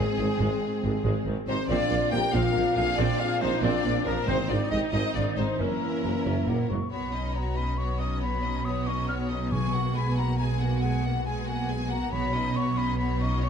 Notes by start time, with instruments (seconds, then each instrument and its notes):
Already playing: trombone section G#2 C4, french horn section G#3, violin section C4 G#4, viola section C4, flute G#4, trumpet G#4, clarinet G#4
0.18 double bass section G#1, tuba G#1, cello section G#2, viola section C3
0.40 double bass section G#1, tuba G#1, cello section G#2, viola section G#3
0.83 double bass section G#1, tuba G#1, cello section G#2, viola section C3
1.04 double bass section G#1, tuba G#1, cello section G#2, viola section G#3
1.26 tuba G#1, double bass section G#1, cello section G#2, viola section D#3
1.47 tuba G#1, double bass section G#1, cello section G#2, viola section C3, french horn section C4, violin section D#4 C5, flute C5, clarinet C5, trumpet C5
1.69 tuba A#1, double bass section A#1, cello section A#2, trombone section A#2 C4, viola section C4 D4, french horn section D4, violin section F4 D5, clarinet D5, trumpet D5, flute D5
1.90 tuba A#1, double bass section A#1, cello section A#2, viola section A#3
2.12 tuba A#1, double bass section A#1, cello section A#2, viola section F3, french horn section G4, violin section A#4 G5, clarinet G5, trumpet G5, flute G5
2.33 tuba A#1, double bass section A#1, cello section A#2, trombone section A#2 C4, viola section C4, french horn section F4, violin section A#4 F5, clarinet F5, trumpet F5, flute F5
2.56 tuba A#1, double bass section A#1, cello section A#2, viola section A#3
2.76 tuba A#1, double bass section A#1, cello section A#2, viola section F3, french horn section F4, violin section G#4 F5, clarinet F5, trumpet F5, flute F5
2.97 tuba A#1, double bass section A#1, cello section A#2, trombone section A#2 C4, viola section C4, french horn section D4, violin section F4 D5, clarinet D5, trumpet D5, flute D5
3.18 french horn section F4, violin section G#4 F5, clarinet F5, flute F5, trumpet F5
3.40 double bass section A#1, tuba A#1, cello section A#2, viola section F3, french horn section C4, violin section D#4 C5, flute C5, clarinet C5, trumpet C5
3.61 double bass section A#1, tuba A#1, cello section A#2, trombone section A#2 C4, viola section C4, french horn section D4, violin section F4 D5, flute D5, trumpet D5, clarinet D5
3.85 tuba A#1, double bass section A#1, cello section A#2, viola section A#3
4.05 tuba A#1, double bass section A#1, cello section A#2, viola section F3, french horn section A#3, violin section D4 A#4, flute A#4, trumpet A#4, clarinet A#4
4.27 double bass section G#1, tuba G#1, timpani G#2, cello section G#2, trombone section D#3 C4, french horn section C4, viola section C4 D#4, violin section D#4 C5, flute C5, trumpet C5, clarinet C5
4.48 tuba G#1, double bass section G#1, cello section G#2, viola section G#3, french horn section D4, violin section F4 D5, flute D5, clarinet D5, trumpet D5
4.70 tuba G#1, double bass section G#1, cello section G#2, viola section D#3, french horn section D#4, violin section G4 D#5, clarinet D#5, trumpet D#5, flute D#5
4.92 tuba G#1, double bass section G#1, cello section G#2, trombone section D#3 C4, viola section C4, french horn section D#4, violin section G#4 D#5, trumpet D#5, flute D#5, clarinet D#5
5.14 tuba G#1, double bass section G#1, cello section G#2, viola section G#3, french horn section D4, violin section F4 D5, clarinet D5, trumpet D5, flute D5
5.36 tuba G#1, double bass section G#1, cello section G#2, viola section D#3, french horn section C4, violin section D#4 C5, clarinet C5, trumpet C5, flute C5
5.58 tuba F#1, double bass section F#1, cello section F#2, trombone section E3 C#4, french horn section A#3, violin section C#4 A#4, viola section C#4 E4, clarinet A#4, trumpet A#4, flute A#4
6.04 tuba F#1, double bass section F#1, cello section F#2, viola section F#3
6.25 tuba F#1, double bass section F#1, cello section F#2, viola section C#4, flute E5
6.47 tuba F#1, double bass section F#1, cello section A#2, viola section A#3, flute F#5
6.69 tuba F#1, double bass section F#1, cello section G#2, viola section F#3, flute C#6
6.90 double bass section B1, cello section B2, viola section B3, violin section F#4 C#5, flute B5
7.12 viola section C#4, violin section D#4 D#5
7.34 viola section B3, violin section F#4 C#5, flute A#5
7.56 viola section C#4, violin section D#4 D#5, flute B5
7.78 viola section B3, violin section F#4 C#5, flute C#6
8.00 viola section C#4, violin section D#4 D#5, flute D#6
8.21 viola section B3, violin section F#4 C#5, flute B5
8.43 viola section C#4, violin section D#4 D#5
8.65 viola section B3, violin section F#4 C#5, flute D#6
8.87 viola section C#4, violin section D#4 D#5, flute C#6
9.08 viola section B3, violin section F#4 C#5, flute F6
9.30 viola section C#4, violin section D#4 D#5, flute D#6
9.52 timpani B2, viola section G#3, violin section G#4 G#5, flute C#6
9.74 viola section A#3, violin section F#4 F#5
9.95 viola section G#3, violin section G#4 G#5, flute B5
10.17 viola section A#3, violin section F#4 F#5, flute A#5
10.39 viola section G#3, violin section G#4 G#5, flute A#5
10.60 viola section A#3, violin section F#4 F#5, flute G#5
10.82 viola section G#3, violin section G#4 G#5, flute F#5
11.04 viola section A#3, violin section F#4 F#5
11.25 viola section G#3, violin section G#4 G#5, flute G#5
11.47 viola section A#3, violin section F#4 F#5, flute G#5
11.69 viola section G#3, violin section G#4 G#5
11.90 viola section A#3, violin section F#4 F#5, flute A#5
12.12 double bass section B1, timpani B2, cello section B2, viola section B3, violin section F#4 C#5, flute B5
12.34 viola section C#4, violin section D#4 D#5
12.56 viola section B3, violin section F#4 C#5, flute C#6
12.77 viola section C#4, violin section D#4 D#5, flute B5
12.98 viola section B3, violin section F#4 C#5, flute B5
13.19 viola section C#4, violin section D#4 D#5, flute C#6
13.41 viola section B3, violin section F#4 C#5, flute C#6